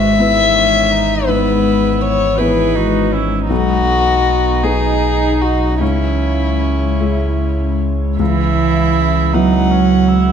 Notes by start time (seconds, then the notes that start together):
Already playing: G#1 G#2 E3 G#3 F#4 B4 E5
0.19 B3 E4 B4
0.56 C#4
0.92 D#4
1.26 G#2 B3 E4 B4
2.02 C#5
2.38 E3 B3 E4 G#4 B4
2.75 D#4 F#4
3.12 C#4 E4
3.49 B1 F#3 B3 D#4 F#4 B4
4.63 B3 D#4 G#4 B4
5.42 F#4
5.81 C#2 G#3 C#4 E4 C#5
7.00 G#3 E4 E5
8.18 C#2 E3 G#3 C#4 E4 B4 E5
9.33 F#3 B3 D#4 E4 E5 F#5
9.71 C#4
10.08 E4